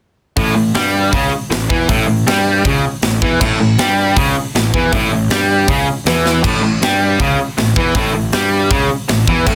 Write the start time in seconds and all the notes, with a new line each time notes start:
0.37 A1 A2, kick, open hi-hat
0.56 A1 A2
0.75 G2 G3, snare, open hi-hat
1.13 C#2 C#3, kick, open hi-hat
1.50 A1 A2, snare, open hi-hat
1.69 E2 E3, kick
1.89 A1 A2, kick, open hi-hat
2.07 A1 A2
2.26 G2 G3, snare, open hi-hat
2.65 C#2 C#3, kick, open hi-hat
3.02 A1 A2, snare, open hi-hat
3.22 E2 E3, kick
3.41 A1 A2, kick, crash
3.59 A1 A2
3.78 G2 G3, snare, open hi-hat
4.16 C#2 C#3, kick, open hi-hat
4.55 A1 A2, snare, open hi-hat
4.74 E2 E3, kick
4.92 A1 A2, kick, open hi-hat
5.11 A1 A2
5.29 G2 G3, snare, open hi-hat
5.68 C#2 C#3, kick, open hi-hat
6.05 E2 E3, snare, open hi-hat
6.26 snare
6.43 A1 A2, kick, crash
6.62 A1 A2
6.82 G2 G3, snare, open hi-hat
7.20 C#2 C#3, kick, open hi-hat
7.58 A1 A2, snare, open hi-hat
7.76 E2 E3, kick
7.95 A1 A2, kick, open hi-hat
8.14 A1 A2
8.32 G2 G3, snare, open hi-hat
8.71 C#2 C#3, kick, open hi-hat
9.09 A1 A2, snare, open hi-hat
9.27 E2 E3, kick
9.46 A1 A2, kick, crash